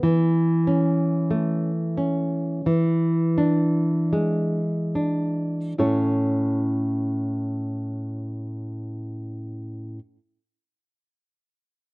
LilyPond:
\new Staff \with { instrumentName = "Nylon-string guitar" } { \time 4/4 \key a \major \tempo 4 = 39 << { r8 cis'4 r4 d'4 r8 | <a, cis' e' a' cis''>1 | } \\ { e4 a8 cis'8 e4 gis8 d'8 | r1 | } >> }